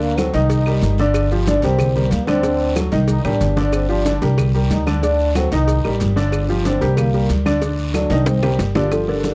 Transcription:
Already playing: D2 D3 D4 D5
0.01 A#3, high conga, maracas
0.17 F#3 C4 F#4 A4, cowbell, high conga, short guiro, claves, maracas
0.34 C2 D#3 D#4 D#5, cowbell, short guiro, maracas
0.50 cowbell, long guiro, maracas
0.66 G3 G4 A#4, high conga, claves, maracas
0.81 G1, cowbell, high conga, short guiro, maracas
0.98 D3 D4 D5, high conga, short guiro, maracas
1.14 cowbell, high conga, long guiro, claves, maracas
1.31 F3 F4 G4, high conga, maracas
1.46 D3 D4 D5, cowbell, high conga, short guiro, maracas
1.62 C2 G3 C4 G4 A#4, cowbell, high conga, short guiro, maracas
1.79 cowbell, high conga, low conga, long guiro, claves, maracas
1.95 G3 G4 A#4, high conga, low conga, maracas
2.11 D2 A#3, cowbell, high conga, short guiro, maracas
2.27 D3 C4 D4 D5, high conga, short guiro, claves, maracas
2.43 D3 D4 D5, cowbell, long guiro, maracas
2.60 high conga, maracas
2.76 F#3 F#4 A4, cowbell, high conga, short guiro, claves, maracas
2.92 C2 D#3 D#4 D#5, cowbell, high conga, short guiro, maracas
3.08 D#4, cowbell, high conga, long guiro, maracas
3.25 A1 G3 D4 G4 A#4, low conga, claves, maracas
3.41 G1, cowbell, low conga, short guiro, maracas
3.56 D3 D4 D5, low conga, short guiro, maracas
3.73 C4, cowbell, high conga, long guiro, claves, maracas
3.89 F3 D4 F4 G4, high conga, maracas
4.06 D3 D4 D5, cowbell, high conga, short guiro, maracas
4.22 C2 G3 G4 A#4, cowbell, high conga, short guiro, maracas
4.38 cowbell, high conga, low conga, long guiro, claves, maracas
4.54 G3 G4 A#4, high conga, maracas
4.70 D2 D#4, cowbell, high conga, short guiro, maracas
4.87 D3 D4 D5, high conga, short guiro, claves, maracas
5.03 D3 D4 D5, cowbell, high conga, long guiro, maracas
5.19 high conga, maracas
5.35 F#3 C4 F#4 A4, cowbell, high conga, short guiro, claves, maracas
5.52 C2 D#3 D#4 D#5, cowbell, high conga, short guiro, maracas
5.68 cowbell, high conga, long guiro, maracas
5.85 A1 G3 G4 A#4, high conga, claves, maracas
6.00 G1, cowbell, high conga, short guiro, maracas
6.16 D3 D4 D5, high conga, short guiro, maracas
6.32 cowbell, high conga, long guiro, claves, maracas
6.49 F3 F4 G4, high conga, maracas
6.65 D3 C4 D4 D5, cowbell, high conga, short guiro, maracas
6.81 C2 G3 G4 A#4, cowbell, high conga, short guiro, maracas
6.97 A#3, cowbell, high conga, low conga, long guiro, claves, maracas
7.14 G3 G4 A#4, high conga, maracas
7.30 D2, cowbell, high conga, short guiro, maracas
7.46 D3 D4 D5, high conga, short guiro, claves, maracas
7.62 D3 D4 D5, cowbell, high conga, long guiro, maracas
7.78 high conga, maracas
7.94 F#3 D4 F#4 A4, cowbell, high conga, short guiro, claves, maracas
8.10 C2 D#3 D#4 D#5, cowbell, high conga, short guiro, maracas
8.26 C4, cowbell, high bongo, high conga, long guiro, maracas
8.43 G3 G4 A#4, high bongo, low conga, claves, maracas
8.59 G1, cowbell, low bongo, short guiro, maracas
8.75 A#2 D3 D4 G4 D5, low bongo, low conga, short guiro, maracas
8.91 D3 F3 F4 G4 A4, high bongo, long guiro, claves, maracas
9.07 D3 D4 A#4 D5, high conga
9.24 high bongo, high conga, short guiro, maracas

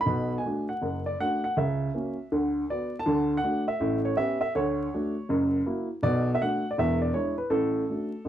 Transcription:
0.01 B5
0.06 B1 B2
0.38 G#5
0.45 A3 D4 F#4
0.69 F#5
0.82 F#1 F#2
1.06 D5
1.20 A3 D4 F#4 F#5
1.44 F#5
1.57 C#2 C#3 E5
1.94 A#3 C#4 F#4
2.32 D2 D3
2.70 B3 F#4 D5
2.99 A5
3.06 D2 D3
3.37 F#5
3.44 A3 D4 F#4
3.68 E5
3.80 A1 A2
4.05 C#5
4.17 B3 C#4 G4 E5
4.41 E5
4.55 D2 D3 C#5
4.94 A3 D4 F#4
5.29 F#1 F#2
5.66 A#3 E4 F#4
6.03 B1 B2 D5
6.35 E5
6.41 A3 D4 F#4 F#5
6.71 D5
6.78 E1 E2 E5
7.02 D5
7.14 G#3 D4 E4 C#5
7.38 B4
7.50 A1 A2 A4
7.90 A3 D4 F#4
8.25 A1 A2

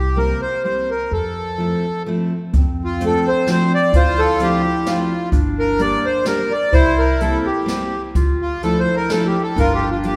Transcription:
Already playing: C2 G4
0.16 G3 A#3 C4 E4 A#4
0.42 C5
0.64 G3 A#3 C4 E4 C5
0.91 A#4
1.11 F2 A4
1.58 F3 A3 C4 E4
2.06 F3 A3 C4 E4
2.53 F2 C4, kick, closed hi-hat
2.85 F4
3.00 F3 A3 C4 D4, closed hi-hat
3.06 A4
3.28 C5
3.47 F3 A3 C4 D4, snare, closed hi-hat
3.51 C5
3.74 D5
3.93 D2 E4 F4 C5, kick, closed hi-hat
4.19 A4
4.39 F3 A3 C4 D4 G4, closed hi-hat
4.86 F3 A3 C4 D4 F4, snare, closed hi-hat
5.32 G1 D4, kick, closed hi-hat
5.59 A#4
5.79 G3 A#3 D4 G4 D5, closed hi-hat
6.05 C5
6.25 G3 A#3 D4 G4 A#4, snare, closed hi-hat
6.51 D5
6.73 C2 E4 C5, kick, closed hi-hat
6.98 A#4
7.20 G3 A#3 C4 E4 A4, closed hi-hat
7.46 G4
7.66 G3 A#3 C4 E4 G4, snare, closed hi-hat
8.15 D2 F4, kick, closed hi-hat
8.42 F4
8.63 F3 A3 D4 E4 A4, closed hi-hat
8.80 C5
8.96 A#4
9.09 F3 A3 D4 E4 A4, snare, closed hi-hat
9.26 G4
9.43 A4
9.56 G1 D4 F4 A#4, kick, closed hi-hat
9.74 G4
9.90 F4
10.03 G3 A#3 D4 F4 G4, closed hi-hat

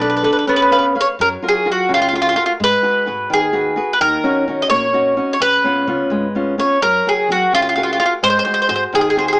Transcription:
Already playing: B1 B3 D4
0.01 A4 B4 D5
0.10 B4
0.17 B4
0.23 A4 B4 D5
0.33 B4
0.39 B4
0.47 C#2 B3 C#4 B4
0.56 B4
0.62 B4
0.71 B4 C#5 F5
0.79 B4
0.95 B4 C#5 F5
1.01 C#5
1.19 F#2 F#3 A#4
1.42 F4 F#4 A#4
1.48 G#4
1.65 F#3 F4 F#4 A#4
1.72 F#4
1.89 C#2 C#3
1.94 F4
2.02 F4
2.09 F4
2.13 F4 F#4 A#4
2.22 F4
2.29 F4
2.35 F4 F#4 A#4
2.46 F4
2.60 G#2 G#3 B4
2.83 F#4 G#4 B4
3.06 G#2 F#4 G#4 B4
3.30 D#2 D#3 G#4
3.53 F#4 G#4 B4
3.76 F#4 G#4 B4
3.93 B4
4.00 D#2 D#3 A#4
4.24 C#4 D#4 F#4
4.48 D#3 C#4 D#4 F#4
4.62 D#5
4.70 A#1 A#3 C#5
4.93 C#4 D#4 F#4
5.17 C#4 D#4 F#4
5.33 C#5
5.40 C#2 C#3 B4
5.64 B3 C#4 F4
5.87 C#3 B3 C#4 F4
6.10 G#1 G#3
6.35 B3 C#4 F4
6.58 B3 C#4 F4 C#5
6.82 F#2 F#3 A#4
7.07 F#4 G#4 A#4
7.29 F#3 F#4 G#4 A#4
7.53 C#2 C#3 F4
7.62 F4
7.69 F4
7.76 F4 F#4 G#4 A#4
7.83 F4
7.93 F4
7.99 F4 F#4 G#4 A#4
8.06 F4
8.23 G#2 G#3 C5
8.30 C5
8.39 C5
8.45 F#4 G#4 C5
8.54 C5
8.62 C5
8.69 G#2 F#4 G#4 C5
8.76 C5
8.93 D#2 D#3 G#4
9.01 G#4
9.10 G#4
9.17 F#4 G#4 C5
9.28 G#4
9.33 G#4

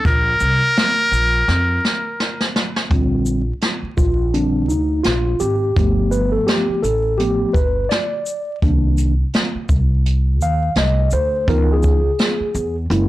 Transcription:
0.05 A#1 A#4, kick, closed hi-hat
0.40 C2, closed hi-hat, shaker
0.76 snare, closed hi-hat
1.12 A#1, shaker
1.48 F2, snare
1.85 snare
2.20 snare
2.41 snare
2.56 snare
2.76 snare
2.90 A#1 D3 G3 C4, kick, closed hi-hat
3.26 shaker
3.61 snare, closed hi-hat
3.83 muted upright bass stroke
3.97 A#1 F4, kick, shaker
4.34 D3 G3 C4 D4, closed hi-hat
4.68 D2 D#4, shaker
5.03 A#1 F4, snare, closed hi-hat
5.40 G#1 G4, shaker
5.76 G1 F3 A3 B3, kick, closed hi-hat
6.11 B4, shaker
6.32 A4
6.47 G4, snare, closed hi-hat
6.68 muted upright bass stroke
6.82 A1 A4, closed hi-hat, shaker
7.18 F3 A3 B3 G4, closed hi-hat
7.53 G1 B4, kick, shaker
7.89 D5, snare, closed hi-hat
8.26 shaker
8.62 C2 D#3 A#3 D4, kick, closed hi-hat
8.98 closed hi-hat, shaker
9.34 snare, closed hi-hat
9.55 muted upright bass stroke
9.69 C2, kick, shaker
10.06 closed hi-hat
10.40 D#2 F5, shaker
10.75 C2 D#5, snare, closed hi-hat
11.11 D2 C5, shaker
11.48 C#2 E3 B3 D#4 A#4, kick, closed hi-hat
11.73 G#4
11.83 kick, shaker
12.19 snare, closed hi-hat
12.40 muted upright bass stroke
12.55 E2, shaker
12.90 F#1 G#3 A#3 E4, closed hi-hat

